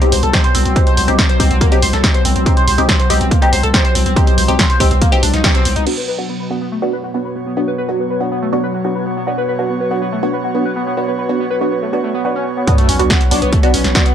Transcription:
Already playing: B2 F#3
0.01 C4 D#4 G4, closed hi-hat
0.12 C2 C5, open hi-hat
0.23 C2 A4, closed hi-hat
0.33 C4 D#4 G4, kick, snare, closed hi-hat
0.44 C5, closed hi-hat
0.55 C2 C4, open hi-hat
0.65 C2 C4, closed hi-hat
0.76 C4 D#4 G4, kick, closed hi-hat
0.87 C5, closed hi-hat
0.97 C2 C5, open hi-hat
1.08 C2 C4 D#4 G4, closed hi-hat
1.19 C4, kick, snare, closed hi-hat
1.29 C5, closed hi-hat
1.40 C2 C4 D#4 G4, kick, open hi-hat
1.51 C2 C4, closed hi-hat
1.61 A#3, kick, closed hi-hat
1.72 C4 D#4 G4, closed hi-hat
1.82 C2 C5, open hi-hat
1.93 C2 A4, snare, closed hi-hat
2.03 C4 D#4 G4, kick, snare, closed hi-hat
2.14 C5, closed hi-hat
2.25 C2 C4, open hi-hat
2.36 C2 C4, closed hi-hat
2.46 C4 D#4 G4, kick, closed hi-hat
2.57 C5, closed hi-hat
2.67 C2 C5, open hi-hat
2.78 C2 C4 D#4 G4, closed hi-hat
2.89 C4, kick, snare, closed hi-hat
2.99 C5, closed hi-hat
3.10 C2 C4 D#4 G4, open hi-hat
3.21 C2 C4, closed hi-hat
3.31 A#3, kick, closed hi-hat
3.42 C4 D#4 G4, closed hi-hat
3.53 C2 C5, open hi-hat
3.63 C2 A4, closed hi-hat
3.74 C4 D#4 G4, kick, snare, closed hi-hat
3.85 C5, closed hi-hat
3.95 C2 C4, open hi-hat
4.06 C2 C4, closed hi-hat
4.16 C4 D#4 G4, kick, closed hi-hat
4.27 C5, closed hi-hat
4.38 C2 C5, open hi-hat
4.48 C2 C4 D#4 G4, closed hi-hat
4.59 C4, kick, snare, closed hi-hat
4.70 C5, closed hi-hat
4.80 C2 C4 D#4 G4, kick, open hi-hat
4.91 C2 C4, closed hi-hat
5.02 A#3, kick, closed hi-hat
5.12 C4 D#4 G4, closed hi-hat
5.23 C2 D4, open hi-hat
5.34 C2 D#4, snare, closed hi-hat
5.44 C4 D#4 G4, kick, snare, closed hi-hat
5.55 C4, closed hi-hat
5.65 C2 C4, open hi-hat
5.76 C2 D#4, closed hi-hat
5.87 B2 F#3 B3 D4 F#4, crash
5.97 B4
6.08 B4
6.18 B3 D4 F#4
6.29 B3
6.36 F#4 B4
6.50 B3 D4 F#4
6.61 B3
6.72 A3
6.82 B3 D4 F#4 C#5
6.93 B4
7.04 F#4
7.14 B3 D4 F#4
7.25 B4
7.36 B3
7.46 B3
7.57 B3 D4 F#4
7.68 B4
7.78 B4
7.89 B3 D4 F#4
8.00 B3
8.10 B4
8.21 B3 D4 F#4
8.32 B3
8.42 A3
8.53 B3 D4 F#4
8.63 B4
8.74 F#4
8.84 B3 D4 F#4
8.95 B4
9.06 B3
9.17 B3
9.27 B3 D4 F#4
9.38 B4
9.48 B4
9.59 B3 D4 F#4
9.70 B3
9.80 B4
9.91 B3 D4 F#4
10.02 B3
10.12 A3
10.23 B3 D4 F#4
10.33 B4
10.44 F#4
10.55 B3 D4 F#4
10.65 B4
10.76 B3
10.87 B3
10.97 B3 D4 F#4
11.08 B4
11.19 B4
11.29 B3 D4 F#4
11.40 B3
11.51 B4
11.61 B3 D4 F#4
11.72 B3
11.82 A3
11.93 B3 D4 F#4
12.04 A3
12.14 B3
12.25 B3 D4 F#4
12.36 C#4
12.57 B3
12.67 B3 D4 F#4, kick, closed hi-hat, sub drop
12.78 A3, closed hi-hat
12.89 B1 C#4, open hi-hat
12.99 B1 B3 D4 F#4, closed hi-hat
13.10 F#4, kick, snare, closed hi-hat
13.21 closed hi-hat
13.31 B1 B3 D4 F#4, open hi-hat
13.42 B1 B3, closed hi-hat
13.53 A3, kick, closed hi-hat
13.63 B3 D4 F#4, closed hi-hat
13.74 B1 C#4, open hi-hat
13.84 B1, snare, closed hi-hat
13.95 B3 D4 F#4, kick, snare, closed hi-hat
14.06 B3, closed hi-hat

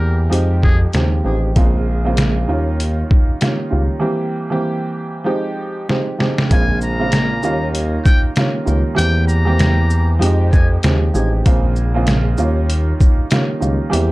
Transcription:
Already playing: E2 E3 G3 A#3 C4 G4 A#4
0.29 F2 F3 G#3 C4 D#4 G4, closed hi-hat
0.63 G#4, kick
0.93 D#2 F3 G#3 C4 D#4 G4, snare, closed hi-hat
1.24 A1 F3 G#3 C4 D#4 G4
1.56 A#1 C#3 G#3 A#3 C4 F4, kick, closed hi-hat
2.05 C#3 G#3 A#3 C4 F4
2.17 snare, closed hi-hat
2.48 D#2 D#3 G3 A#3 C#4 F4
2.80 closed hi-hat
3.11 kick
3.41 D#3 G3 A#3 C#4 F4, snare, closed hi-hat
3.70 C#2 D#3 G3 A#3 C#4 F4
4.00 E3 G3 A#3 C4 G4
4.50 E3 G3 A#3 C4 G4
5.24 F3 G#3 C4 D#4 G4
5.89 F3 G#3 C4 D#4 G4, snare
6.18 F3 G#3 C4 D#4 G4, snare
6.38 snare
6.51 A#1 C#3 G#3 A#3 C4 F4 G#5, kick, closed hi-hat
6.81 A#5, shaker
6.99 C#3 G#3 A#3 C4 F4
7.12 snare, closed hi-hat
7.43 D#2 D#3 G3 A#3 C#4 F4, shaker
7.75 closed hi-hat
8.05 G5, kick, shaker
8.36 D#3 G3 A#3 C#4 F4, snare, closed hi-hat
8.65 C#2 D#3 G3 A#3 C#4 F4, shaker
8.95 E2 E3 G3 A#3 C4 G4 G5, closed hi-hat
9.28 A#5, shaker
9.45 E3 G3 A#3 C4 G4
9.59 snare, closed hi-hat
9.90 shaker
10.19 F2 F3 G#3 C4 D#4 G4, closed hi-hat
10.53 G#5, kick, shaker
10.83 D#2 F3 G#3 C4 D#4 G4, snare, closed hi-hat
11.13 A1 F3 G#3 C4 D#4 G4, shaker
11.45 A#1 C#3 G#3 A#3 C4 F4, kick, closed hi-hat
11.76 shaker
11.94 C#3 G#3 A#3 C4 F4
12.07 snare, closed hi-hat
12.37 D#2 D#3 G3 A#3 C#4 F4, shaker
12.70 closed hi-hat
13.00 kick, shaker
13.31 D#3 G3 A#3 C#4 F4, snare, closed hi-hat
13.60 C#2 D#3 G3 A#3 C#4 F4, shaker
13.90 E2 E3 G3 A#3 C4 G4, closed hi-hat

